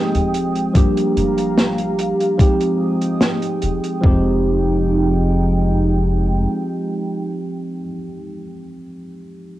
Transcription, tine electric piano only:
0.00 0.66 F3 medium
0.00 0.67 G#3 medium
0.00 0.67 C4 medium
0.00 0.68 D#4 medium
0.00 0.68 G4 medium
0.74 2.31 F3 medium
0.74 2.31 G3 medium
0.74 2.32 A#3 medium
0.74 2.32 D4 medium
0.74 2.32 G4 medium
2.38 3.95 F3 medium
2.38 3.96 G#3 medium
2.38 3.96 C4 medium
2.38 3.96 D#4 medium
2.38 3.97 G4 medium
4.01 7.78 F3 medium
4.01 7.79 G#3 medium
4.01 7.80 C4 medium
4.01 7.81 D#4 medium
4.06 7.82 G4 medium

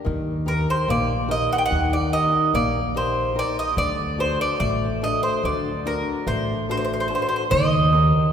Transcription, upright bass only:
0.06 0.64 D#2 medium
0.88 1.46 A#1 medium
1.72 2.29 D#2 medium
2.54 3.41 A#1 medium
3.77 4.35 D2 medium
4.60 5.19 A1 medium
5.44 6.02 D2 medium
6.27 7.14 A1 medium
7.52 8.10 D#2 loud

